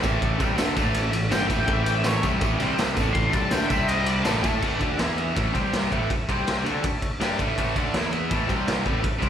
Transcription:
0.02 picked electric bass A1, overdriven electric guitar A2 E3 A3, transistor combo organ E4 A4 C#5, kick, ride, tambourine
0.22 kick, ride
0.38 picked electric bass C2, overdriven electric guitar C3 G3 C4, kick, ride, tambourine
0.56 picked electric bass D2, overdriven electric guitar D3 A3 D4, transistor combo organ E4 A4 E5, snare, ride, tambourine
0.76 picked electric bass A1, overdriven electric guitar A2 E3 A3, kick, ride, tambourine
0.94 transistor combo organ E4 A4 C#5, ride, tambourine
1.12 picked electric bass A1, overdriven electric guitar A2 E3, transistor combo organ E4 A4, ride
1.17 transistor combo organ C#5
1.30 picked electric bass G1, overdriven electric guitar G2 D3 G3, transistor combo organ E4, lead electric guitar G5, snare, ride, tambourine
1.34 transistor combo organ A4 C#5
1.47 picked electric bass A1, overdriven electric guitar A2 E3 A3, lead electric guitar E5, kick, ride, tambourine
1.60 lead electric guitar G5
1.67 picked electric bass A1, overdriven electric guitar A2 E3 A3, kick, ride
1.71 transistor combo organ E4 A4 C#5, lead electric guitar E5
1.84 lead electric guitar G5, ride, tambourine
1.95 lead electric guitar E5
2.04 transistor combo organ E4 A4 E5, lead electric guitar C#5, snare, ride, tambourine
2.22 picked electric bass C2, overdriven electric guitar C3 G3 C4, kick, ride, tambourine
2.41 picked electric bass A1, overdriven electric guitar A2 E3 A3, transistor combo organ E4 A4 C#5, kick, ride, tambourine
2.60 picked electric bass C2, overdriven electric guitar C3 G3 C4, transistor combo organ C4 G4, ride
2.65 transistor combo organ C5
2.78 snare, ride, tambourine
2.96 picked electric bass A1, overdriven electric guitar A2 E3 A3, transistor combo organ E4 A4 C#5, kick, ride, tambourine
3.13 lead electric guitar C6, kick, ride, tambourine
3.33 picked electric bass C2, overdriven electric guitar C3 G3 C4, lead electric guitar A5, kick, ride, tambourine
3.49 picked electric bass D2, overdriven electric guitar D3, transistor combo organ E4 A4 C#5, lead electric guitar G5, snare, ride, tambourine
3.54 overdriven electric guitar A3 D4
3.67 picked electric bass C2, overdriven electric guitar C3, transistor combo organ C4 G4 C5, lead electric guitar E5, kick, ride, tambourine
3.72 overdriven electric guitar G3 C4
3.88 lead electric guitar D#5, ride, tambourine
4.05 transistor combo organ C4 G4 C5, lead electric guitar D5, ride, tambourine
4.23 picked electric bass A1, overdriven electric guitar A2, transistor combo organ E4 A4 C#5, lead electric guitar A4, snare, ride, tambourine
4.27 overdriven electric guitar E3 A3
4.43 picked electric bass A2, overdriven electric guitar A3 E4 A4, lead electric guitar A4, kick, ride, tambourine
4.59 picked electric bass A1, overdriven electric guitar A2 E3, transistor combo organ E4 A4 C#5, kick, crash
4.63 overdriven electric guitar A3
4.79 picked electric bass D2, overdriven electric guitar D3 A3 D4, kick, ride
4.96 picked electric bass E2, overdriven electric guitar E3 B3, transistor combo organ E4 B4 E5, snare, ride
5.01 overdriven electric guitar E4
5.18 ride
5.34 picked electric bass A1, overdriven electric guitar A2 E3 A3, transistor combo organ E4 A4 C#5, kick, ride
5.52 picked electric bass C2, overdriven electric guitar C3 G3 C4, transistor combo organ C4 G4 C5, kick, ride
5.73 snare, ride
5.92 picked electric bass A1, overdriven electric guitar A2 E3 A3, transistor combo organ E4 A4 C#5, kick, ride
6.10 muted overdriven electric guitar stroke, kick, ride
6.27 picked electric bass C2, overdriven electric guitar C3 G3, transistor combo organ C4 G4 C5, kick, ride
6.31 overdriven electric guitar C4
6.47 snare, ride
6.64 picked electric bass D2, overdriven electric guitar D3 A3 D4, transistor combo organ E4 A4 C#5, ride
6.84 kick, ride
7.02 kick, ride
7.20 picked electric bass G2, overdriven electric guitar G3 D4 G4, transistor combo organ E4 A4 C#5, snare, ride
7.39 picked electric bass A1, overdriven electric guitar A2 E3 A3, kick, ride
7.58 picked electric bass A1, overdriven electric guitar A2 E3 A3, transistor combo organ E4 A4 C#5, kick, ride
7.76 picked electric bass D2, overdriven electric guitar D3 A3 D4, kick, ride
7.93 picked electric bass E2, overdriven electric guitar E3 B3, transistor combo organ E4 B4 E5, snare, ride
7.97 overdriven electric guitar E4
8.12 ride
8.29 picked electric bass A1, overdriven electric guitar A2 E3 A3, transistor combo organ E4 A4 C#5, kick, ride
8.45 picked electric bass C2, overdriven electric guitar C3 G3, transistor combo organ C4 G4 C5
8.49 overdriven electric guitar C4, kick, ride
8.68 snare, ride
8.83 picked electric bass A1, overdriven electric guitar A2 E3 A3, transistor combo organ E4 A4 C#5, kick, ride
9.03 muted overdriven electric guitar stroke, kick, ride
9.19 picked electric bass C2, overdriven electric guitar C3 G3 C4, transistor combo organ C4 G4 C5, kick, ride

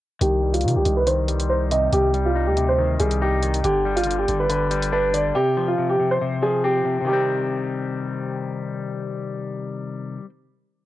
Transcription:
0.21 808-style bass C2, clean electric guitar D#3, grand piano G4, closed hi-hat
0.43 clean electric guitar G3
0.53 grand piano F4, closed hi-hat
0.61 808-style bass C3, clean electric guitar D#3, closed hi-hat
0.68 closed hi-hat
0.75 808-style bass C2, grand piano G4
0.85 808-style bass C2, clean electric guitar D#3, closed hi-hat
0.97 grand piano B4
1.07 clean electric guitar D#3, grand piano C5, closed hi-hat
1.28 clean electric guitar G3, closed hi-hat
1.40 closed hi-hat
1.49 clean electric guitar D#4, grand piano C5
1.71 clean electric guitar C3, grand piano D#5, closed hi-hat
1.92 808-style bass C2, grand piano G4, closed hi-hat
2.14 clean electric guitar G3, closed hi-hat
2.25 grand piano F4
2.35 clean electric guitar D#4
2.46 808-style bass D2, grand piano G4
2.57 clean electric guitar C3, closed hi-hat
2.68 grand piano C5
2.78 clean electric guitar D#3
3.00 808-style bass C2, clean electric guitar G3, grand piano G#4, closed hi-hat
3.11 closed hi-hat
3.22 clean electric guitar D#4, grand piano G4
3.43 clean electric guitar D#3, closed hi-hat
3.54 closed hi-hat
3.64 808-style bass G1, clean electric guitar D3, grand piano G4, closed hi-hat
3.85 clean electric guitar G3
3.96 grand piano F4, closed hi-hat
4.04 clean electric guitar D3, closed hi-hat
4.11 closed hi-hat
4.18 grand piano G4
4.28 808-style bass G1, clean electric guitar D3, closed hi-hat
4.40 grand piano B4
4.50 clean electric guitar D3, grand piano B4, closed hi-hat
4.71 clean electric guitar G3, closed hi-hat
4.82 closed hi-hat
4.92 clean electric guitar D4, grand piano B4
5.14 clean electric guitar D3, grand piano D5, closed hi-hat
5.35 clean electric guitar C3, grand piano G4
5.57 clean electric guitar F3
5.68 grand piano F4
5.78 clean electric guitar C3
5.89 grand piano G4
6.00 clean electric guitar C3
6.11 grand piano C5
6.21 clean electric guitar C3
6.42 clean electric guitar F3, grand piano G#4
6.64 clean electric guitar C4, grand piano G4
6.85 clean electric guitar C3
7.01 clean electric guitar C3 D#3
7.07 clean electric guitar G3, grand piano G4
7.13 clean electric guitar C4

